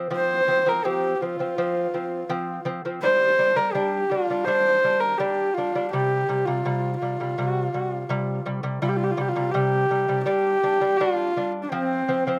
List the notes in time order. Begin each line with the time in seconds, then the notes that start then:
0.11 F3 C4
0.16 C5
0.47 F3 C4
0.66 F3 C4 A#4
0.85 F3 C4 G4
1.15 G4
1.22 F3 C4 F4
1.39 F3 C4
1.58 F3 C4
1.94 F3 C4
2.29 F3 C4
2.65 F3 C4
2.85 F3 C4
3.02 G3 D4 C5
3.39 G3 D4
3.56 G3 D4 A#4
3.72 G3 D4 G4
4.09 G3 D4 F4
4.30 G3 D4
4.45 G3 D4 C5
4.84 G3 D4
5.00 A#4
5.18 G3 D4 G4
5.54 G3 F4
5.58 D4
5.75 G3 D4
5.91 C3 G3 G4
6.28 C3 G3
6.45 C3 G3 F4
6.65 C3 G3
6.98 C3 F4
7.03 G3
7.20 C3 G3
7.38 C3 G3
7.49 F#4
7.62 F4
7.74 C3 G3 F#4
7.91 F4
8.09 C3 G3
8.46 C3 G3
8.63 C3 G3
8.82 C3 G3 F4
8.89 G4
8.96 F4
9.04 G4
9.11 F4
9.17 C3 G3 G4
9.29 F4
9.36 C3 G3
9.51 C3 G3 G4
9.90 C3 G3
10.08 C3 G3
10.24 G3 D4 G4
10.63 G3 D4
10.81 G3 D4
10.98 G3 D4 F4
11.37 G3 D4
11.63 D4
11.71 F3 C4
12.08 F3 C4
12.27 F3 C4